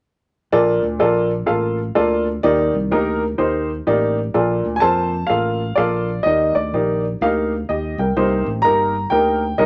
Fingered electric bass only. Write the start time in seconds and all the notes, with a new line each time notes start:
0.53 A#1
0.83 D2
1.01 A#1
1.49 A1
1.96 D2
2.44 D#2
2.74 C2
2.92 D2
3.39 D#2
3.87 A1
4.35 A#1
4.65 D2
4.82 F2
5.30 A1
5.78 A#1
6.26 D#2
6.55 D2
6.73 A#1
7.21 D2
7.69 D#2
7.98 C2
8.16 C2
8.46 A1
8.64 G1
9.11 D2
9.58 C2